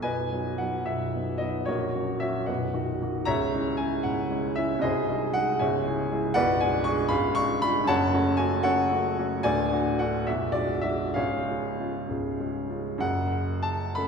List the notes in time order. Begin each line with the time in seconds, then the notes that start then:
0.00 B0 B1 B4 D#5 G#5
0.32 F#3 B3 D#4
0.58 F#3 B3 D#4 F#5
0.85 B0 B1 E5
1.15 F#3 B3 D#4
1.38 F#3 B3 D#4 D#5
1.65 A#0 A#1 F#4 A#4 C#5
1.94 F#3 C#4 F#4
2.20 F#3 C#4 F#4 E5
2.46 B0 B1 B4 D#5 F#5
2.73 D#3 D#4 F#4
3.02 D#3 D#4 F#4
3.25 C#1 C#2 C#5 E5 A#5
3.54 G#3 C#4 E4
3.77 G#3 C#4 E4 G#5
4.03 C#1 C#2 F#5
4.30 G#3 C#4 E4
4.56 G#3 C#4 E4 E5
4.79 C2 D#5
4.83 C1 G#4 C5
5.09 G#3 D#4 G#4
5.34 G#3 D#4 G#4 F#5
5.59 C#1 C#2 C#5 E5 G#5
5.86 G#3 E4 G#4
6.12 G#3 E4 G#4
6.34 B0 B1 B4 D5 F#5
6.61 G#3 D4 G#4 G#5
6.84 G#3 D4 G#4 C#6
7.08 C#1 C#2 F5 G#5 B5
7.35 G#3 D4 F4 C#6
7.62 G#3 D4 F4 B5
7.84 F#2 A5
7.88 F#1 C#5 F#5
8.14 A3 C#4 F#4
8.37 A3 C#4 F#4 G#5
8.63 F#1 F#2 A4 C#5 F#5
8.91 A3 C#4 F#4
9.19 A3 C#4 F#4
9.43 D1 D2 D5 G#5
9.72 A3 D4 F#4
9.99 A3 D4 F#4 F#5
10.27 B0 B1 E5
10.52 G#3 D4 F#4 D5
10.81 G#3 D4 F#4 E5
11.14 C#1 C#2 G#4 C#5 F5
11.48 G#3 C#4 F4
11.79 G#3 C#4 F4
12.09 C#1 C#2
12.40 G#3 C#4 F4
12.70 G#3 C#4 F4
12.98 F#1 F#2 F#5
13.63 A5
13.95 A3 C#4 A4 B5